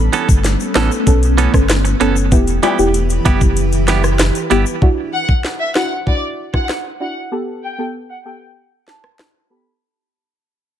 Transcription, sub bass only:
0.29 G1
0.76 A1
1.07 B1
1.54 G1
2.01 F#1
2.32 E1
2.79 E1
3.26 F#1
4.51 G1

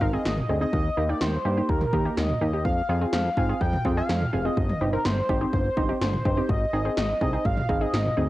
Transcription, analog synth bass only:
0.01 G#1
0.25 G#1
0.49 D2
0.73 D#2
0.97 D#2
1.21 D#2
1.45 G2
1.69 D#2
1.93 D#2
2.17 D#2
2.41 D#2
2.65 F2
2.89 F2
3.13 F2
3.37 G#2
3.61 F2
3.85 F2
4.09 F2
4.33 F1
4.57 G1
4.81 G1
5.05 G1
5.29 G#1
5.53 G1
5.77 G1
6.01 G1
6.25 G1
6.49 G#1
6.73 G#1
6.97 G#1
7.21 C2
7.45 G#1
7.69 G#1
7.93 G#1
8.17 D2

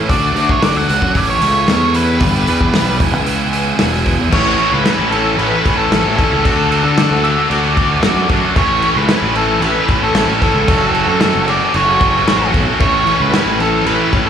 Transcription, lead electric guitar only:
0.10 D5
0.51 C#5
0.64 D5
0.77 F#5
1.17 D5
1.30 C#5
1.70 C#5
1.95 B4
4.34 C#5
4.73 B4
5.11 A4
5.38 B4
5.77 A4
6.16 A4
6.83 A4
7.24 E5
7.50 D5
8.57 C#5
8.97 B4
9.36 A4
9.63 B4
10.03 A4
10.42 A4
11.09 A4
11.49 D5
11.76 C#5
12.81 C#5
13.22 B4
13.61 A4
13.86 B4
14.26 A4

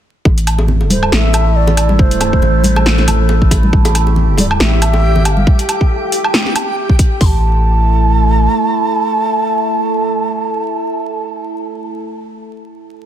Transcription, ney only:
0.91 C5
1.12 F5
1.16 E5
1.56 D5
2.00 C5
4.39 D5
4.60 E5
5.25 A5
5.30 F5
7.21 C6
7.25 A5

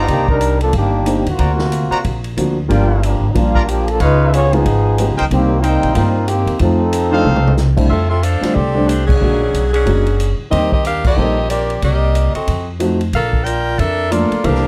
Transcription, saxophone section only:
7.90 C4 F4 A4 E5
8.09 C4 F4 A4 E5
8.23 D4 A4 C5 F5
8.54 C4 G4 A4 D5
8.88 A3 D4 G4 C5
9.07 F#3 C#4 D4 G#4
9.73 F#3 C#4 D4 G#4
10.51 C4 G4 A#4 D#5
10.73 C4 G4 A#4 D#5
10.86 D4 G4 A#4 F5
11.07 C4 G4 A#4 D#5
11.50 C4 G4 A#4 D5
11.84 A#3 G4 D5 D#5
12.35 C4 F#4 A4 D#5
13.14 D4 A4 A#4 F5
13.44 F4 A#4 D5 G5
13.79 D4 A4 A#4 E5
14.11 A#3 F4 A4 D5
14.45 D4 G4 A#4 F5

